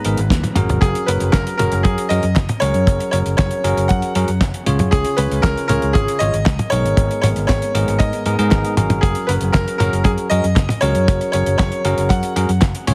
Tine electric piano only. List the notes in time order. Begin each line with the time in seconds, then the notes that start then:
0.05 G#2 B3 D#4 G#4 A#4
0.57 F#3 C#4 F#4 G#4 A#4
1.08 F#3 C#4 F#4 G#4 A#4
1.59 F#3 C#4 F#4 G#4 A#4
2.10 F#3 C#4 F#4 G#4 A#4
2.62 F#3 C#4 F#4 G#4 A#4
3.13 F#3 C#4 F#4 G#4 A#4
3.64 F#3 C#4 F#4 G#4 A#4
4.16 F#3 C#4 F#4 G#4 A#4
4.67 C#3 C#4 F4 G#4 C#5
5.18 C#3 C#4 F4 G#4 C#5
5.69 C#3 C#4 F4 G#4 C#5
6.21 C#3 C#4 F4 G#4 C#5
6.72 G#2 B3 D#4 G#4 A#4
7.23 G#2 B3 D#4 G#4 A#4
7.75 G#2 B3 D#4 G#4 A#4
8.26 G#2 B3 D#4 G#4 A#4
8.39 G#2 B3 D#4 G#4 A#4
8.77 F#3 C#4 F#4 G#4 A#4
9.29 F#3 C#4 F#4 G#4 A#4
9.80 F#3 C#4 F#4 G#4 A#4
10.31 F#3 C#4 F#4 G#4 A#4
10.82 F#3 C#4 F#4 G#4 A#4
11.34 F#3 C#4 F#4 G#4 A#4
11.85 F#3 C#4 F#4 G#4 A#4
12.36 F#3 C#4 F#4 G#4 A#4
12.87 C#3 C#4 F4 G#4 C#5